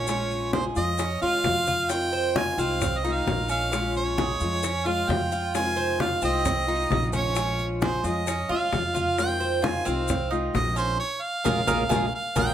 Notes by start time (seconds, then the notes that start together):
Already playing: A#1 C#5
0.07 F3 G#3 C#4 F4, high bongo, high conga, maracas
0.30 high conga, maracas
0.53 G#4 C5, high bongo, high conga, maracas
0.76 F2 G#3 C#4 F4 D#5, high bongo, high conga, maracas
0.98 C#4, muted steel-string acoustic guitar stroke, high bongo, high conga, maracas
1.21 D#2 G#3 C#4 F4 F5, high bongo, high conga, maracas
1.44 F2 F3 G#3 C#4 F4, high bongo, low bongo, high conga, maracas
1.67 F4, high bongo, high conga, maracas
1.89 C3 D#3 G#3 C4 F4 G5, high bongo, high conga, maracas
2.12 C5, high conga, maracas
2.36 F4 G#5, high bongo, high conga, maracas
2.58 C2 D#3 G#3 C4 F4 F5, high conga, maracas
2.81 muted steel-string acoustic guitar stroke, high bongo, high conga, low conga, maracas
2.98 D#5
3.04 D#3 G#3 C4 D#4 F4, high conga, maracas
3.13 F5
3.27 A#1 D#3 G#3 C4 F4, high bongo, low bongo, high conga, maracas
3.49 C#4 F5, maracas
3.72 F3 G#3 C#4 F4, high bongo, high conga, maracas
3.95 C#5, high conga, maracas
4.18 G#4, high bongo, high conga, maracas
4.40 F2 G#3 C#4 F4, high bongo, high conga, maracas
4.63 C#4, muted steel-string acoustic guitar stroke, high bongo, high conga, maracas
4.85 G#3 C#4 F4 F5, high bongo, high conga, maracas
5.07 F2 F3 G#3 C#4 F4 G5, high bongo, low bongo, high conga, maracas
5.32 F4, high bongo, maracas
5.54 C3 D#3 G#3 C4 F4 G#5, high bongo, high conga, maracas
5.76 C5, high conga, maracas
6.00 F4 F5, high bongo, high conga, maracas
6.22 C2 D#3 G#3 C4 F4 D#5, high conga, maracas
6.45 muted steel-string acoustic guitar stroke, high bongo, high conga, low conga, maracas
6.67 D#3 G#3 C4 D#4 F4, high conga, maracas
6.90 A#1 D#3 G#3 C4 F4, high bongo, low bongo, high conga, maracas
7.13 C#4 C#5, high conga, maracas
7.35 F3 G#3 C#4 F4, high bongo, maracas
7.59 high conga, maracas
7.81 G#4 C5, high bongo, high conga, maracas
8.04 F2 G#3 C#4 F4 D#5, high bongo, high conga, maracas
8.27 C#4, muted steel-string acoustic guitar stroke, high bongo, high conga, maracas
8.49 D#2 G#3 C#4 F4 F5, high bongo, high conga, maracas
8.73 F2 F3 G#3 C#4 F4, high bongo, low bongo, high conga, maracas
8.94 F4, high bongo, high conga, maracas
9.18 C3 D#3 G#3 C4 F4 G5, high bongo, high conga, maracas
9.40 C5, high conga, maracas
9.62 F4 G#5, high bongo, high conga, maracas
9.85 C2 D#3 G#3 C4 F4 F5, high conga, maracas
10.08 muted steel-string acoustic guitar stroke, high bongo, high conga, low conga, maracas
10.31 D#3 G#3 C4 D#4 F4, high conga, maracas
10.54 A#1 D#3 C4 D#5, high bongo, low bongo, high conga, maracas
10.76 C#4 C5, maracas
11.00 C#5
11.22 F5
11.44 A#1 G#3 A#3 C#4 F4 G#4 A#4, low bongo, high conga, maracas
11.67 A#1 G#3 A#3 C#4 F4 G#4 A#4, low bongo, high conga, maracas
11.89 A#1 G#3 A#3 C#4 F4 G#4 A#4, low bongo, high conga, maracas
12.15 F5
12.36 A#1 G#3 A#3 C#4 F4 G#4 A#4 G5, low bongo, high conga, maracas